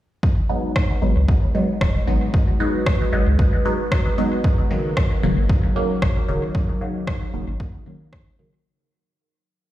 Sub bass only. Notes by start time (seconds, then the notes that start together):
1.02 G#1
1.16 C#2
1.81 D#1
2.07 G#1
3.13 G#1
3.27 C#2
5.23 D#1
5.37 G#1
6.02 A#1
6.28 D#1
7.34 D#1
7.48 G#1